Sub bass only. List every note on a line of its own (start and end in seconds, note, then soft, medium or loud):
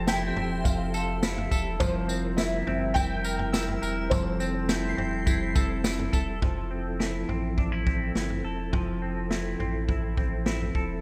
0.00 0.32 F1 loud
0.36 0.64 E1 medium
0.65 1.48 F1 medium
1.52 1.79 E1 loud
1.80 2.63 F1 loud
2.67 2.94 G1 medium
2.96 3.78 F1 medium
3.82 4.10 E1 loud
4.11 4.94 F1 loud
4.98 5.25 E1 medium
5.27 6.09 F1 loud
6.13 6.41 E1 medium
6.42 7.25 F1 loud
7.29 8.11 A1 medium
8.15 8.43 G1 medium
8.44 8.71 E1 medium
8.73 9.56 F1 loud
9.60 10.71 A1 medium
10.75 11.01 E1 medium